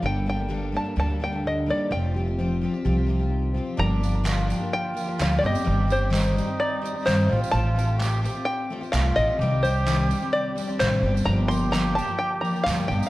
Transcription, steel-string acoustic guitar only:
\new Staff \with { instrumentName = "Steel-string acoustic guitar" } { \clef bass \time 4/4 \key g \minor \tempo 4 = 128 << { r8 d'4 bes8 d'2 | r8 g'4 f'8 g'2~ | g'1 | r1 |
r1 | r1 | r1 | } \\ { g,4 g4. d8 d8 ees8 | f4 c'4. c8 ees8 f8 | r1 | r1 |
r1 | r1 | r1 | } >> }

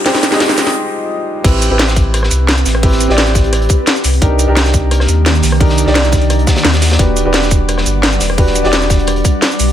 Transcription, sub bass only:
\new Staff \with { instrumentName = "Sub bass" } { \clef bass \time 4/4 \key c \major \tempo 4 = 173 r1 | a,,8. a,,4.~ a,,16 c,4 a,,8~ | a,,8. a,,4.~ a,,16 r4 c,8 | c,8. c,4.~ c,16 ees,4 c,8~ |
c,8. c,4.~ c,16 r8 ees,4 | e,,8. e,,4.~ e,,16 g,,4 e,,8~ | e,,8. e,,4.~ e,,16 r4 b,,8 | }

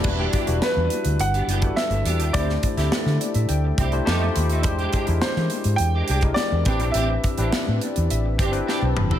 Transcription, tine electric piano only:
\new Staff \with { instrumentName = "Tine electric piano" } { \time 4/4 \key e \minor \tempo 4 = 104 << { r1 | r4. d''16 e''16 g''4 a''8 b''8 | r1 | r4. d''8 e''8 g''8 a''8 b''8 | } \\ { <g d' e' fis' b'>8. <g d' e' fis' b'>2 <g d' e' fis' a'>4~ <g d' e' fis' a'>16 | <a d' e' g' c''>8. <a d' e' g' a'>2 <a d' e' g' c''>16 <a ees' f' g' c''>4 | <gis d' e' g' bis'>8. <gis d' e' g' ais'>2 <gis d' e' g' ais'>8. <c' d' e' g' b'>8~ | <c' d' e' g' b'>8. <c' d' e' g' b'>2 <c' d' e' g' b'>4~ <c' d' e' g' b'>16 | } >> }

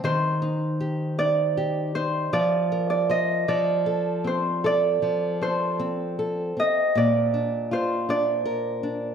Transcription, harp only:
\new Staff \with { instrumentName = "Harp" } { \time 6/8 \key f \mixolydian \tempo 4. = 52 c''4. d''4 c''8 | d''8. d''16 ees''8 d''4 c''8 | d''4 c''4. ees''8 | d''4 c''8 d''4 r8 | }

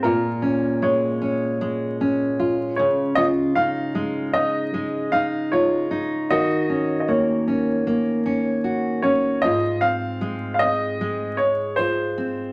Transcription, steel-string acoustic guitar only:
\new Staff \with { instrumentName = "Steel-string acoustic guitar" } { \time 4/4 \key des \major \tempo 4 = 76 <bes, f'>8 des'8 aes8 des'8 aes8 des'8 f'8 des8 | <des f'>8 ees'8 aes8 ees'8 aes8 ees'8 f'8 ees'8 | <ees ges'>8 des'8 bes8 des'8 bes8 des'8 ges'8 des'8 | <aes, f'>8 c'8 aes8 c'8 aes4 f'8 c'8 | }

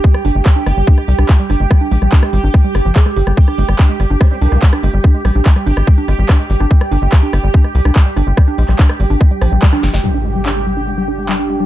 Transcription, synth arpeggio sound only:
\new Staff \with { instrumentName = "Synth arpeggio sound" } { \clef bass \time 4/4 \key g \phrygian \tempo 4 = 144 aes16 g16 d'16 aes16 g16 d'16 aes16 g16 d'16 aes16 g16 d'16 aes16 g16 d'16 aes16 | g16 d'16 aes16 g16 d'16 aes16 g16 d'16 aes16 g16 g'16 f16 aes'16 aes16 g'16 g16 | g16 d'16 aes16 g16 d'16 aes16 g16 d'16 aes16 g16 d'16 aes16 g16 d'16 aes16 g16 | d'16 aes16 g16 d'16 aes16 g16 d'16 aes16 g16 d'16 aes16 g16 d'16 aes16 g16 d'16 |
aes16 g16 d'16 aes16 g16 d'16 aes16 g16 d'16 aes16 g16 d'16 aes16 g16 d'16 aes16 | g16 d'16 aes16 g16 d'16 aes16 g16 d'16 aes16 g16 f16 g16 g16 d'16 f16 aes16 | g16 d'16 aes16 g16 d'16 aes16 g16 d'16 aes16 g16 d'16 aes16 g16 d'16 aes16 g16 | }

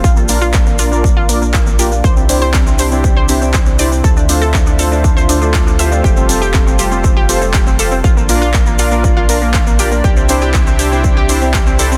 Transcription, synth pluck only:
\new Staff \with { instrumentName = "Synth pluck" } { \time 4/4 \key bes \lydian \tempo 4 = 120 f'16 bes16 bes16 f'16 bes16 bes16 f'16 bes16 bes16 f'16 bes16 bes16 f'16 bes16 g'16 bes16 | c''16 c'16 c'16 c''16 c'16 c'16 c''16 c'16 c'16 c''16 c'16 c'16 c''16 c'16 d''16 c'16 | a'16 d'16 d'16 a'16 d'16 d'16 a'16 d'16 d'16 c''16 d'16 d'16 d''16 d'16 e''16 d'16 | g'16 c'16 c'16 g'16 c'16 c'16 g'16 c'16 c'16 g'16 c'16 c'16 g'16 c'16 a'16 c'16 |
f'16 bes16 bes16 f'16 bes16 bes16 f'16 bes16 bes16 f'16 bes16 bes16 f'16 bes16 g'16 bes16 | g'16 c'16 c'16 g'16 c'16 c'16 g'16 c'16 c'16 g'16 c'16 c'16 g'16 c'16 a'16 c'16 | }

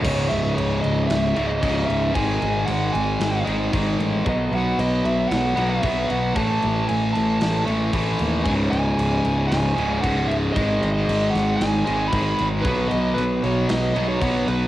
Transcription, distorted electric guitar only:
\new Staff \with { instrumentName = "Distorted electric guitar" } { \clef bass \time 4/4 \key cis \minor \tempo 4 = 114 <cis, gis, cis>2~ <cis, gis, cis>8 <cis, gis, cis>8 <cis, gis, cis>4 | <gis, dis gis>2~ <gis, dis gis>8 <gis, dis gis>8 <gis, dis gis>4 | <b, fis b>2~ <b, fis b>8 <b, fis b>8 <b, fis b>4 | <a, e a>2~ <a, e a>8 <a, e a>8 <a, e a>4 |
<cis, gis, cis>2~ <cis, gis, cis>8 <cis, gis, cis>8 <cis, gis, cis>4 | <gis, dis gis>2~ <gis, dis gis>8 <gis, dis gis>8 <gis, dis gis>4 | <b, fis b>2~ <b, fis b>8 <b, fis b>8 <b, fis b>4 | }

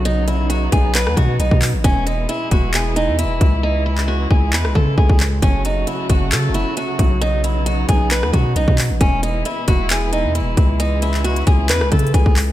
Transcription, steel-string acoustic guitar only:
\new Staff \with { instrumentName = "Steel-string acoustic guitar" } { \time 4/4 \key e \major \tempo 4 = 134 dis'8 e'8 fis'8 gis'8 b'8 fis'8 dis'8 r8 | cis'8 dis'8 e'8 fis'8 gis'8 dis'8 e'4 | dis'8 e'8 fis'8 gis'8 b'8 a'8 gis'8 r8 | cis'8 dis'8 e'8 fis'8 a'8 e'8 fis'4 |
dis'8 e'8 fis'8 gis'8 b'8 fis'8 dis'8 r8 | cis'8 dis'8 e'8 fis'8 gis'8 dis'8 e'4 | dis'8 e'8 fis'8 gis'8 b'8 a'8 gis'8 r8 | }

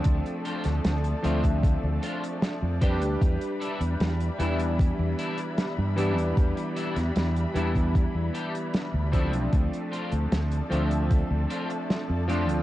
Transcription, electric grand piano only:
\new Staff \with { instrumentName = "Electric grand piano" } { \time 4/4 \key d \dorian \tempo 4 = 76 <f a c' d'>4. <f a c' d' e''>2 <g d' g' b'>8~ | <g d' g' b'>4. <e g b d' e'>2 <e g b d' g'>8~ | <e g b d' g'>4. <e g b d' e'>2 <f a c' d'>8~ | <f a c' d'>4. <f a c' d' e''>2 <f a c' d' f'>8 | }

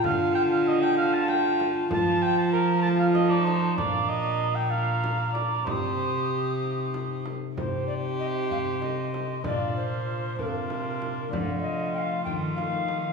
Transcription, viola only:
\new Staff \with { instrumentName = "Viola" } { \time 6/8 \key c \dorian \tempo 4. = 64 f'4. f'4. | f'4. f'8. ees'8. | d'4. d'4. | g'2~ g'8. r16 |
g'2. | d'4. d'4. | a2. | }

